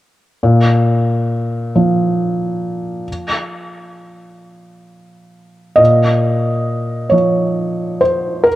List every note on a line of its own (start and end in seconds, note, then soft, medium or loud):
0.43 3.03 A#2 soft
1.76 5.79 F3 soft
5.76 8.42 A#2 soft
5.76 7.12 D#5 medium
7.10 8.55 F3 soft
7.10 8.00 C#5 soft
8.01 8.46 C5 medium
8.44 8.55 A#4 medium